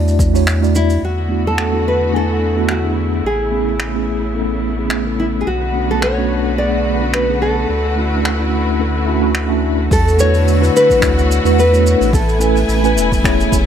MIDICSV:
0, 0, Header, 1, 6, 480
1, 0, Start_track
1, 0, Tempo, 555556
1, 884, Time_signature, 4, 2, 24, 8
1, 11802, End_track
2, 0, Start_track
2, 0, Title_t, "Nylon-string guitar"
2, 0, Program_c, 0, 24
2, 0, Note_on_c, 0, 69, 96
2, 379, Note_off_c, 0, 69, 0
2, 654, Note_on_c, 0, 64, 90
2, 872, Note_off_c, 0, 64, 0
2, 903, Note_on_c, 0, 66, 78
2, 1272, Note_on_c, 0, 69, 81
2, 1278, Note_off_c, 0, 66, 0
2, 1620, Note_off_c, 0, 69, 0
2, 1624, Note_on_c, 0, 71, 79
2, 1861, Note_off_c, 0, 71, 0
2, 1868, Note_on_c, 0, 69, 89
2, 2342, Note_on_c, 0, 66, 76
2, 2350, Note_off_c, 0, 69, 0
2, 2820, Note_on_c, 0, 68, 77
2, 2827, Note_off_c, 0, 66, 0
2, 3737, Note_off_c, 0, 68, 0
2, 4489, Note_on_c, 0, 64, 71
2, 4539, Note_off_c, 0, 64, 0
2, 4672, Note_on_c, 0, 68, 64
2, 4725, Note_off_c, 0, 68, 0
2, 4726, Note_on_c, 0, 66, 89
2, 5072, Note_off_c, 0, 66, 0
2, 5104, Note_on_c, 0, 69, 81
2, 5200, Note_off_c, 0, 69, 0
2, 5211, Note_on_c, 0, 73, 94
2, 5685, Note_off_c, 0, 73, 0
2, 5688, Note_on_c, 0, 74, 93
2, 6132, Note_off_c, 0, 74, 0
2, 6171, Note_on_c, 0, 71, 82
2, 6391, Note_off_c, 0, 71, 0
2, 6409, Note_on_c, 0, 69, 84
2, 7454, Note_off_c, 0, 69, 0
2, 7454, Note_on_c, 0, 68, 84
2, 8052, Note_off_c, 0, 68, 0
2, 8577, Note_on_c, 0, 69, 98
2, 8794, Note_off_c, 0, 69, 0
2, 8815, Note_on_c, 0, 73, 114
2, 9297, Note_off_c, 0, 73, 0
2, 9301, Note_on_c, 0, 71, 99
2, 10006, Note_off_c, 0, 71, 0
2, 10017, Note_on_c, 0, 71, 94
2, 10492, Note_off_c, 0, 71, 0
2, 10495, Note_on_c, 0, 69, 79
2, 11415, Note_off_c, 0, 69, 0
2, 11802, End_track
3, 0, Start_track
3, 0, Title_t, "Tine electric piano"
3, 0, Program_c, 1, 4
3, 0, Note_on_c, 1, 57, 77
3, 0, Note_on_c, 1, 62, 72
3, 0, Note_on_c, 1, 64, 74
3, 0, Note_on_c, 1, 66, 76
3, 0, Note_on_c, 1, 74, 89
3, 260, Note_off_c, 1, 57, 0
3, 264, Note_off_c, 1, 62, 0
3, 265, Note_off_c, 1, 64, 0
3, 269, Note_off_c, 1, 66, 0
3, 271, Note_off_c, 1, 74, 0
3, 284, Note_on_c, 1, 57, 84
3, 291, Note_on_c, 1, 62, 76
3, 296, Note_on_c, 1, 64, 76
3, 300, Note_on_c, 1, 66, 77
3, 308, Note_on_c, 1, 73, 93
3, 499, Note_off_c, 1, 57, 0
3, 502, Note_off_c, 1, 62, 0
3, 504, Note_off_c, 1, 64, 0
3, 507, Note_off_c, 1, 66, 0
3, 511, Note_off_c, 1, 73, 0
3, 524, Note_on_c, 1, 57, 80
3, 533, Note_on_c, 1, 62, 66
3, 536, Note_on_c, 1, 64, 73
3, 542, Note_on_c, 1, 66, 68
3, 548, Note_on_c, 1, 74, 79
3, 865, Note_off_c, 1, 57, 0
3, 869, Note_off_c, 1, 62, 0
3, 870, Note_off_c, 1, 64, 0
3, 873, Note_off_c, 1, 66, 0
3, 877, Note_off_c, 1, 74, 0
3, 1111, Note_on_c, 1, 57, 64
3, 1117, Note_on_c, 1, 59, 62
3, 1122, Note_on_c, 1, 62, 59
3, 1130, Note_on_c, 1, 64, 56
3, 1137, Note_on_c, 1, 66, 69
3, 1459, Note_off_c, 1, 57, 0
3, 1462, Note_off_c, 1, 59, 0
3, 1464, Note_off_c, 1, 62, 0
3, 1468, Note_off_c, 1, 64, 0
3, 1472, Note_off_c, 1, 66, 0
3, 1483, Note_on_c, 1, 57, 66
3, 1486, Note_on_c, 1, 59, 62
3, 1494, Note_on_c, 1, 62, 65
3, 1498, Note_on_c, 1, 64, 66
3, 1504, Note_on_c, 1, 66, 80
3, 1811, Note_off_c, 1, 57, 0
3, 1813, Note_off_c, 1, 59, 0
3, 1817, Note_off_c, 1, 62, 0
3, 1819, Note_off_c, 1, 64, 0
3, 1821, Note_off_c, 1, 66, 0
3, 1826, Note_on_c, 1, 57, 69
3, 1832, Note_on_c, 1, 59, 62
3, 1836, Note_on_c, 1, 62, 68
3, 1843, Note_on_c, 1, 64, 64
3, 1849, Note_on_c, 1, 80, 76
3, 2176, Note_off_c, 1, 57, 0
3, 2179, Note_off_c, 1, 59, 0
3, 2181, Note_off_c, 1, 62, 0
3, 2185, Note_off_c, 1, 64, 0
3, 2188, Note_off_c, 1, 80, 0
3, 2196, Note_on_c, 1, 57, 73
3, 2202, Note_on_c, 1, 59, 68
3, 2210, Note_on_c, 1, 62, 63
3, 2214, Note_on_c, 1, 64, 65
3, 2219, Note_on_c, 1, 66, 79
3, 2415, Note_off_c, 1, 57, 0
3, 2418, Note_off_c, 1, 59, 0
3, 2422, Note_off_c, 1, 62, 0
3, 2424, Note_off_c, 1, 64, 0
3, 2426, Note_off_c, 1, 66, 0
3, 2440, Note_on_c, 1, 57, 63
3, 2445, Note_on_c, 1, 59, 62
3, 2449, Note_on_c, 1, 62, 64
3, 2456, Note_on_c, 1, 64, 59
3, 2462, Note_on_c, 1, 68, 70
3, 2783, Note_off_c, 1, 57, 0
3, 2785, Note_off_c, 1, 59, 0
3, 2787, Note_off_c, 1, 62, 0
3, 2790, Note_off_c, 1, 64, 0
3, 2793, Note_off_c, 1, 68, 0
3, 3030, Note_on_c, 1, 57, 63
3, 3035, Note_on_c, 1, 59, 59
3, 3040, Note_on_c, 1, 61, 62
3, 3047, Note_on_c, 1, 64, 61
3, 3050, Note_on_c, 1, 68, 75
3, 3378, Note_off_c, 1, 57, 0
3, 3381, Note_off_c, 1, 59, 0
3, 3383, Note_off_c, 1, 61, 0
3, 3387, Note_off_c, 1, 64, 0
3, 3388, Note_off_c, 1, 68, 0
3, 3404, Note_on_c, 1, 57, 67
3, 3408, Note_on_c, 1, 59, 68
3, 3415, Note_on_c, 1, 61, 67
3, 3421, Note_on_c, 1, 64, 63
3, 3425, Note_on_c, 1, 68, 74
3, 3731, Note_off_c, 1, 57, 0
3, 3733, Note_off_c, 1, 59, 0
3, 3737, Note_off_c, 1, 61, 0
3, 3740, Note_off_c, 1, 64, 0
3, 3742, Note_off_c, 1, 68, 0
3, 3742, Note_on_c, 1, 57, 73
3, 3747, Note_on_c, 1, 59, 66
3, 3752, Note_on_c, 1, 61, 65
3, 3761, Note_on_c, 1, 64, 64
3, 3766, Note_on_c, 1, 69, 78
3, 4095, Note_off_c, 1, 57, 0
3, 4097, Note_off_c, 1, 59, 0
3, 4100, Note_off_c, 1, 61, 0
3, 4104, Note_off_c, 1, 64, 0
3, 4106, Note_off_c, 1, 69, 0
3, 4120, Note_on_c, 1, 57, 69
3, 4125, Note_on_c, 1, 59, 65
3, 4129, Note_on_c, 1, 61, 72
3, 4134, Note_on_c, 1, 64, 68
3, 4139, Note_on_c, 1, 68, 79
3, 4337, Note_off_c, 1, 57, 0
3, 4339, Note_off_c, 1, 59, 0
3, 4341, Note_off_c, 1, 61, 0
3, 4344, Note_off_c, 1, 64, 0
3, 4346, Note_off_c, 1, 68, 0
3, 4359, Note_on_c, 1, 57, 70
3, 4365, Note_on_c, 1, 59, 59
3, 4371, Note_on_c, 1, 61, 62
3, 4374, Note_on_c, 1, 64, 59
3, 4380, Note_on_c, 1, 69, 74
3, 4702, Note_off_c, 1, 57, 0
3, 4705, Note_off_c, 1, 59, 0
3, 4708, Note_off_c, 1, 61, 0
3, 4710, Note_off_c, 1, 64, 0
3, 4712, Note_off_c, 1, 69, 0
3, 4949, Note_on_c, 1, 57, 67
3, 4955, Note_on_c, 1, 59, 63
3, 4960, Note_on_c, 1, 61, 62
3, 4966, Note_on_c, 1, 62, 62
3, 4969, Note_on_c, 1, 66, 72
3, 5298, Note_off_c, 1, 57, 0
3, 5301, Note_off_c, 1, 59, 0
3, 5303, Note_off_c, 1, 61, 0
3, 5306, Note_off_c, 1, 62, 0
3, 5308, Note_off_c, 1, 66, 0
3, 5324, Note_on_c, 1, 57, 71
3, 5327, Note_on_c, 1, 59, 66
3, 5333, Note_on_c, 1, 61, 65
3, 5338, Note_on_c, 1, 62, 66
3, 5343, Note_on_c, 1, 66, 77
3, 5651, Note_off_c, 1, 57, 0
3, 5653, Note_off_c, 1, 59, 0
3, 5656, Note_off_c, 1, 61, 0
3, 5659, Note_off_c, 1, 62, 0
3, 5661, Note_off_c, 1, 66, 0
3, 5665, Note_on_c, 1, 57, 70
3, 5671, Note_on_c, 1, 59, 72
3, 5680, Note_on_c, 1, 62, 68
3, 5687, Note_on_c, 1, 68, 84
3, 6016, Note_off_c, 1, 57, 0
3, 6019, Note_off_c, 1, 59, 0
3, 6023, Note_off_c, 1, 62, 0
3, 6027, Note_off_c, 1, 68, 0
3, 6043, Note_on_c, 1, 57, 76
3, 6048, Note_on_c, 1, 59, 72
3, 6052, Note_on_c, 1, 61, 69
3, 6060, Note_on_c, 1, 62, 67
3, 6065, Note_on_c, 1, 66, 83
3, 6258, Note_off_c, 1, 57, 0
3, 6261, Note_off_c, 1, 59, 0
3, 6263, Note_off_c, 1, 61, 0
3, 6267, Note_off_c, 1, 62, 0
3, 6269, Note_off_c, 1, 66, 0
3, 6286, Note_on_c, 1, 57, 65
3, 6292, Note_on_c, 1, 59, 60
3, 6297, Note_on_c, 1, 61, 61
3, 6304, Note_on_c, 1, 62, 67
3, 6309, Note_on_c, 1, 68, 74
3, 6625, Note_off_c, 1, 57, 0
3, 6628, Note_off_c, 1, 59, 0
3, 6631, Note_off_c, 1, 61, 0
3, 6634, Note_off_c, 1, 62, 0
3, 6637, Note_off_c, 1, 68, 0
3, 6873, Note_on_c, 1, 57, 67
3, 6879, Note_on_c, 1, 61, 61
3, 6883, Note_on_c, 1, 62, 61
3, 6888, Note_on_c, 1, 64, 62
3, 6894, Note_on_c, 1, 66, 74
3, 7220, Note_off_c, 1, 57, 0
3, 7223, Note_off_c, 1, 61, 0
3, 7225, Note_off_c, 1, 62, 0
3, 7227, Note_off_c, 1, 64, 0
3, 7230, Note_off_c, 1, 66, 0
3, 7245, Note_on_c, 1, 57, 72
3, 7252, Note_on_c, 1, 61, 68
3, 7257, Note_on_c, 1, 62, 63
3, 7263, Note_on_c, 1, 64, 66
3, 7267, Note_on_c, 1, 66, 84
3, 7572, Note_off_c, 1, 57, 0
3, 7576, Note_off_c, 1, 61, 0
3, 7578, Note_off_c, 1, 62, 0
3, 7581, Note_off_c, 1, 64, 0
3, 7583, Note_off_c, 1, 66, 0
3, 7592, Note_on_c, 1, 57, 74
3, 7596, Note_on_c, 1, 61, 68
3, 7602, Note_on_c, 1, 62, 72
3, 7606, Note_on_c, 1, 64, 71
3, 7613, Note_on_c, 1, 69, 84
3, 7817, Note_off_c, 1, 57, 0
3, 7819, Note_off_c, 1, 61, 0
3, 7821, Note_off_c, 1, 62, 0
3, 7824, Note_off_c, 1, 64, 0
3, 7826, Note_on_c, 1, 57, 80
3, 7827, Note_off_c, 1, 69, 0
3, 7832, Note_on_c, 1, 61, 71
3, 7837, Note_on_c, 1, 62, 76
3, 7842, Note_on_c, 1, 64, 77
3, 7847, Note_on_c, 1, 66, 94
3, 7949, Note_off_c, 1, 57, 0
3, 7952, Note_off_c, 1, 61, 0
3, 7954, Note_off_c, 1, 62, 0
3, 7956, Note_off_c, 1, 64, 0
3, 7959, Note_off_c, 1, 66, 0
3, 7961, Note_on_c, 1, 57, 87
3, 7964, Note_on_c, 1, 61, 78
3, 7968, Note_on_c, 1, 62, 75
3, 7973, Note_on_c, 1, 64, 81
3, 7978, Note_on_c, 1, 66, 91
3, 8177, Note_off_c, 1, 57, 0
3, 8179, Note_off_c, 1, 61, 0
3, 8180, Note_off_c, 1, 62, 0
3, 8183, Note_off_c, 1, 64, 0
3, 8186, Note_off_c, 1, 66, 0
3, 8193, Note_on_c, 1, 57, 86
3, 8200, Note_on_c, 1, 61, 76
3, 8207, Note_on_c, 1, 62, 83
3, 8214, Note_on_c, 1, 64, 78
3, 8219, Note_on_c, 1, 66, 88
3, 8539, Note_off_c, 1, 57, 0
3, 8542, Note_off_c, 1, 61, 0
3, 8546, Note_off_c, 1, 62, 0
3, 8550, Note_off_c, 1, 64, 0
3, 8552, Note_off_c, 1, 66, 0
3, 8787, Note_on_c, 1, 57, 78
3, 8792, Note_on_c, 1, 62, 74
3, 8799, Note_on_c, 1, 64, 66
3, 8803, Note_on_c, 1, 66, 67
3, 8810, Note_on_c, 1, 71, 89
3, 9137, Note_off_c, 1, 57, 0
3, 9140, Note_off_c, 1, 62, 0
3, 9143, Note_off_c, 1, 64, 0
3, 9145, Note_off_c, 1, 66, 0
3, 9148, Note_off_c, 1, 71, 0
3, 9158, Note_on_c, 1, 57, 80
3, 9159, Note_on_c, 1, 62, 74
3, 9166, Note_on_c, 1, 64, 77
3, 9170, Note_on_c, 1, 66, 71
3, 9175, Note_on_c, 1, 71, 92
3, 9489, Note_off_c, 1, 57, 0
3, 9489, Note_off_c, 1, 62, 0
3, 9492, Note_off_c, 1, 64, 0
3, 9495, Note_off_c, 1, 66, 0
3, 9497, Note_off_c, 1, 71, 0
3, 9506, Note_on_c, 1, 57, 82
3, 9510, Note_on_c, 1, 62, 74
3, 9517, Note_on_c, 1, 64, 77
3, 9522, Note_on_c, 1, 66, 78
3, 9530, Note_on_c, 1, 73, 95
3, 9856, Note_off_c, 1, 57, 0
3, 9858, Note_off_c, 1, 62, 0
3, 9862, Note_off_c, 1, 64, 0
3, 9864, Note_off_c, 1, 66, 0
3, 9868, Note_off_c, 1, 73, 0
3, 9880, Note_on_c, 1, 57, 79
3, 9886, Note_on_c, 1, 62, 76
3, 9890, Note_on_c, 1, 64, 76
3, 9895, Note_on_c, 1, 66, 73
3, 9901, Note_on_c, 1, 71, 93
3, 10097, Note_off_c, 1, 57, 0
3, 10100, Note_off_c, 1, 62, 0
3, 10102, Note_off_c, 1, 64, 0
3, 10104, Note_off_c, 1, 66, 0
3, 10107, Note_off_c, 1, 71, 0
3, 10116, Note_on_c, 1, 57, 80
3, 10121, Note_on_c, 1, 62, 72
3, 10126, Note_on_c, 1, 64, 70
3, 10131, Note_on_c, 1, 66, 75
3, 10137, Note_on_c, 1, 73, 88
3, 10461, Note_off_c, 1, 57, 0
3, 10463, Note_off_c, 1, 62, 0
3, 10466, Note_off_c, 1, 64, 0
3, 10468, Note_off_c, 1, 66, 0
3, 10471, Note_off_c, 1, 73, 0
3, 10704, Note_on_c, 1, 57, 77
3, 10709, Note_on_c, 1, 61, 73
3, 10712, Note_on_c, 1, 64, 70
3, 10721, Note_on_c, 1, 80, 69
3, 10726, Note_on_c, 1, 71, 85
3, 11055, Note_off_c, 1, 57, 0
3, 11058, Note_off_c, 1, 61, 0
3, 11060, Note_off_c, 1, 64, 0
3, 11064, Note_off_c, 1, 80, 0
3, 11066, Note_off_c, 1, 71, 0
3, 11085, Note_on_c, 1, 57, 84
3, 11088, Note_on_c, 1, 61, 79
3, 11093, Note_on_c, 1, 64, 75
3, 11101, Note_on_c, 1, 80, 77
3, 11107, Note_on_c, 1, 71, 93
3, 11412, Note_off_c, 1, 57, 0
3, 11414, Note_off_c, 1, 61, 0
3, 11416, Note_off_c, 1, 64, 0
3, 11420, Note_off_c, 1, 80, 0
3, 11423, Note_off_c, 1, 71, 0
3, 11427, Note_on_c, 1, 57, 86
3, 11431, Note_on_c, 1, 61, 79
3, 11439, Note_on_c, 1, 64, 76
3, 11443, Note_on_c, 1, 68, 80
3, 11452, Note_on_c, 1, 73, 97
3, 11777, Note_off_c, 1, 57, 0
3, 11779, Note_off_c, 1, 61, 0
3, 11783, Note_off_c, 1, 64, 0
3, 11785, Note_off_c, 1, 68, 0
3, 11789, Note_off_c, 1, 73, 0
3, 11802, End_track
4, 0, Start_track
4, 0, Title_t, "String section"
4, 0, Program_c, 2, 48
4, 879, Note_on_c, 2, 50, 70
4, 881, Note_on_c, 2, 66, 75
4, 882, Note_on_c, 2, 59, 57
4, 884, Note_on_c, 2, 57, 60
4, 884, Note_on_c, 2, 64, 64
4, 2782, Note_off_c, 2, 50, 0
4, 2783, Note_off_c, 2, 66, 0
4, 2784, Note_off_c, 2, 59, 0
4, 2805, Note_on_c, 2, 49, 67
4, 2806, Note_on_c, 2, 59, 59
4, 4689, Note_off_c, 2, 57, 0
4, 4689, Note_off_c, 2, 64, 0
4, 4705, Note_off_c, 2, 49, 0
4, 4718, Note_on_c, 2, 71, 64
4, 4721, Note_on_c, 2, 50, 70
4, 4724, Note_on_c, 2, 57, 68
4, 4725, Note_on_c, 2, 66, 77
4, 6610, Note_off_c, 2, 59, 0
4, 6643, Note_on_c, 2, 64, 67
4, 8527, Note_off_c, 2, 71, 0
4, 8528, Note_off_c, 2, 50, 0
4, 8529, Note_off_c, 2, 57, 0
4, 8530, Note_off_c, 2, 66, 0
4, 8544, Note_off_c, 2, 64, 0
4, 8564, Note_on_c, 2, 57, 68
4, 8565, Note_on_c, 2, 64, 70
4, 8566, Note_on_c, 2, 66, 93
4, 8567, Note_on_c, 2, 50, 81
4, 8569, Note_on_c, 2, 59, 71
4, 10465, Note_off_c, 2, 64, 0
4, 10466, Note_off_c, 2, 50, 0
4, 10466, Note_off_c, 2, 66, 0
4, 10478, Note_on_c, 2, 80, 74
4, 10481, Note_on_c, 2, 64, 87
4, 11802, Note_off_c, 2, 57, 0
4, 11802, Note_off_c, 2, 59, 0
4, 11802, Note_off_c, 2, 64, 0
4, 11802, Note_off_c, 2, 80, 0
4, 11802, End_track
5, 0, Start_track
5, 0, Title_t, "Sub bass"
5, 0, Program_c, 3, 38
5, 0, Note_on_c, 3, 40, 85
5, 848, Note_off_c, 3, 40, 0
5, 885, Note_on_c, 3, 40, 88
5, 2783, Note_off_c, 3, 40, 0
5, 2799, Note_on_c, 3, 33, 78
5, 4700, Note_off_c, 3, 33, 0
5, 4726, Note_on_c, 3, 35, 86
5, 6624, Note_off_c, 3, 35, 0
5, 6647, Note_on_c, 3, 38, 83
5, 8544, Note_off_c, 3, 38, 0
5, 8563, Note_on_c, 3, 40, 99
5, 9249, Note_off_c, 3, 40, 0
5, 9522, Note_on_c, 3, 38, 88
5, 9853, Note_off_c, 3, 38, 0
5, 9892, Note_on_c, 3, 40, 104
5, 10331, Note_off_c, 3, 40, 0
5, 10376, Note_on_c, 3, 33, 102
5, 10929, Note_off_c, 3, 33, 0
5, 10960, Note_on_c, 3, 33, 86
5, 11200, Note_on_c, 3, 28, 98
5, 11212, Note_off_c, 3, 33, 0
5, 11647, Note_off_c, 3, 28, 0
5, 11681, Note_on_c, 3, 28, 89
5, 11802, Note_off_c, 3, 28, 0
5, 11802, End_track
6, 0, Start_track
6, 0, Title_t, "Drums"
6, 64, Note_on_c, 9, 46, 52
6, 69, Note_on_c, 9, 82, 39
6, 150, Note_off_c, 9, 46, 0
6, 156, Note_off_c, 9, 82, 0
6, 165, Note_on_c, 9, 36, 105
6, 171, Note_on_c, 9, 82, 89
6, 252, Note_off_c, 9, 36, 0
6, 257, Note_off_c, 9, 82, 0
6, 304, Note_on_c, 9, 46, 61
6, 304, Note_on_c, 9, 82, 49
6, 390, Note_off_c, 9, 46, 0
6, 390, Note_off_c, 9, 82, 0
6, 406, Note_on_c, 9, 26, 88
6, 410, Note_on_c, 9, 46, 57
6, 421, Note_on_c, 9, 82, 55
6, 493, Note_off_c, 9, 26, 0
6, 497, Note_off_c, 9, 46, 0
6, 507, Note_off_c, 9, 82, 0
6, 536, Note_on_c, 9, 46, 46
6, 553, Note_on_c, 9, 82, 37
6, 622, Note_off_c, 9, 46, 0
6, 639, Note_off_c, 9, 82, 0
6, 648, Note_on_c, 9, 82, 82
6, 734, Note_off_c, 9, 82, 0
6, 775, Note_on_c, 9, 82, 49
6, 778, Note_on_c, 9, 46, 64
6, 862, Note_off_c, 9, 82, 0
6, 864, Note_off_c, 9, 46, 0
6, 1366, Note_on_c, 9, 26, 83
6, 1452, Note_off_c, 9, 26, 0
6, 2320, Note_on_c, 9, 26, 79
6, 2407, Note_off_c, 9, 26, 0
6, 3280, Note_on_c, 9, 26, 77
6, 3366, Note_off_c, 9, 26, 0
6, 4235, Note_on_c, 9, 26, 94
6, 4321, Note_off_c, 9, 26, 0
6, 5204, Note_on_c, 9, 26, 79
6, 5290, Note_off_c, 9, 26, 0
6, 6165, Note_on_c, 9, 26, 90
6, 6252, Note_off_c, 9, 26, 0
6, 7130, Note_on_c, 9, 26, 85
6, 7216, Note_off_c, 9, 26, 0
6, 8075, Note_on_c, 9, 26, 79
6, 8162, Note_off_c, 9, 26, 0
6, 8564, Note_on_c, 9, 36, 120
6, 8564, Note_on_c, 9, 46, 70
6, 8570, Note_on_c, 9, 82, 58
6, 8650, Note_off_c, 9, 36, 0
6, 8651, Note_off_c, 9, 46, 0
6, 8657, Note_off_c, 9, 82, 0
6, 8703, Note_on_c, 9, 46, 48
6, 8711, Note_on_c, 9, 82, 39
6, 8789, Note_off_c, 9, 46, 0
6, 8797, Note_off_c, 9, 82, 0
6, 8804, Note_on_c, 9, 82, 84
6, 8890, Note_off_c, 9, 82, 0
6, 8934, Note_on_c, 9, 46, 59
6, 8936, Note_on_c, 9, 82, 50
6, 9020, Note_off_c, 9, 46, 0
6, 9022, Note_off_c, 9, 82, 0
6, 9046, Note_on_c, 9, 46, 66
6, 9054, Note_on_c, 9, 82, 60
6, 9132, Note_off_c, 9, 46, 0
6, 9141, Note_off_c, 9, 82, 0
6, 9180, Note_on_c, 9, 46, 56
6, 9191, Note_on_c, 9, 82, 44
6, 9267, Note_off_c, 9, 46, 0
6, 9278, Note_off_c, 9, 82, 0
6, 9299, Note_on_c, 9, 82, 75
6, 9386, Note_off_c, 9, 82, 0
6, 9414, Note_on_c, 9, 46, 58
6, 9417, Note_on_c, 9, 36, 60
6, 9425, Note_on_c, 9, 82, 50
6, 9500, Note_off_c, 9, 46, 0
6, 9504, Note_off_c, 9, 36, 0
6, 9511, Note_off_c, 9, 82, 0
6, 9523, Note_on_c, 9, 26, 92
6, 9523, Note_on_c, 9, 36, 118
6, 9529, Note_on_c, 9, 46, 70
6, 9534, Note_on_c, 9, 82, 64
6, 9610, Note_off_c, 9, 26, 0
6, 9610, Note_off_c, 9, 36, 0
6, 9615, Note_off_c, 9, 46, 0
6, 9620, Note_off_c, 9, 82, 0
6, 9664, Note_on_c, 9, 82, 48
6, 9750, Note_off_c, 9, 82, 0
6, 9775, Note_on_c, 9, 82, 85
6, 9862, Note_off_c, 9, 82, 0
6, 9899, Note_on_c, 9, 82, 57
6, 9900, Note_on_c, 9, 46, 57
6, 9985, Note_off_c, 9, 82, 0
6, 9986, Note_off_c, 9, 46, 0
6, 10004, Note_on_c, 9, 46, 61
6, 10017, Note_on_c, 9, 82, 51
6, 10090, Note_off_c, 9, 46, 0
6, 10103, Note_off_c, 9, 82, 0
6, 10143, Note_on_c, 9, 82, 46
6, 10229, Note_off_c, 9, 82, 0
6, 10250, Note_on_c, 9, 82, 75
6, 10336, Note_off_c, 9, 82, 0
6, 10375, Note_on_c, 9, 46, 66
6, 10386, Note_on_c, 9, 82, 45
6, 10461, Note_off_c, 9, 46, 0
6, 10472, Note_off_c, 9, 82, 0
6, 10479, Note_on_c, 9, 46, 69
6, 10483, Note_on_c, 9, 36, 125
6, 10491, Note_on_c, 9, 82, 57
6, 10565, Note_off_c, 9, 46, 0
6, 10570, Note_off_c, 9, 36, 0
6, 10577, Note_off_c, 9, 82, 0
6, 10616, Note_on_c, 9, 46, 43
6, 10618, Note_on_c, 9, 82, 45
6, 10702, Note_off_c, 9, 46, 0
6, 10705, Note_off_c, 9, 82, 0
6, 10721, Note_on_c, 9, 82, 85
6, 10807, Note_off_c, 9, 82, 0
6, 10846, Note_on_c, 9, 46, 59
6, 10859, Note_on_c, 9, 82, 46
6, 10932, Note_off_c, 9, 46, 0
6, 10946, Note_off_c, 9, 82, 0
6, 10957, Note_on_c, 9, 46, 72
6, 10966, Note_on_c, 9, 82, 60
6, 11044, Note_off_c, 9, 46, 0
6, 11053, Note_off_c, 9, 82, 0
6, 11091, Note_on_c, 9, 46, 44
6, 11096, Note_on_c, 9, 82, 40
6, 11177, Note_off_c, 9, 46, 0
6, 11182, Note_off_c, 9, 82, 0
6, 11212, Note_on_c, 9, 82, 85
6, 11298, Note_off_c, 9, 82, 0
6, 11332, Note_on_c, 9, 46, 64
6, 11336, Note_on_c, 9, 36, 66
6, 11344, Note_on_c, 9, 82, 55
6, 11418, Note_off_c, 9, 46, 0
6, 11422, Note_off_c, 9, 36, 0
6, 11431, Note_off_c, 9, 82, 0
6, 11443, Note_on_c, 9, 36, 123
6, 11449, Note_on_c, 9, 46, 66
6, 11452, Note_on_c, 9, 26, 76
6, 11453, Note_on_c, 9, 82, 61
6, 11529, Note_off_c, 9, 36, 0
6, 11536, Note_off_c, 9, 46, 0
6, 11538, Note_off_c, 9, 26, 0
6, 11540, Note_off_c, 9, 82, 0
6, 11580, Note_on_c, 9, 82, 46
6, 11666, Note_off_c, 9, 82, 0
6, 11682, Note_on_c, 9, 36, 108
6, 11689, Note_on_c, 9, 82, 85
6, 11768, Note_off_c, 9, 36, 0
6, 11775, Note_off_c, 9, 82, 0
6, 11802, End_track
0, 0, End_of_file